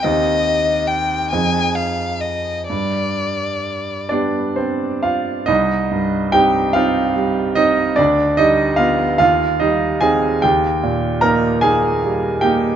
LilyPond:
<<
  \new Staff \with { instrumentName = "Violin" } { \time 6/8 \key c \minor \tempo 4. = 48 ees''4 g''8 aes''8 f''8 ees''8 | d''4. r4. | r2. | r2. |
r2. | }
  \new Staff \with { instrumentName = "Grand piano" } { \time 6/8 \key c \minor r2. | r4. <d' d''>8 <c' c''>8 <f' f''>8 | <ees' ees''>4 <g' g''>8 <f' f''>4 <ees' ees''>8 | <d' d''>8 <ees' ees''>8 <f' f''>8 <f' f''>8 <ees' ees''>8 <aes' aes''>8 |
<g' g''>4 <bes' bes''>8 <aes' aes''>4 <g' g''>8 | }
  \new Staff \with { instrumentName = "Grand piano" } { \time 6/8 \key c \minor <ees, c' ees' g'>4. <f, c' ees' aes'>4. | g,4. <b g'>4. | c,8 g,8 <c' ees'>8 <c' ees'>8 g8 c'8 | d,8 g8 b8 ees,8 g8 <c' ees'>8 |
ees,8 bes,8 <bes ees'>8 <bes ees'>8 g8 <bes ees'>8 | }
>>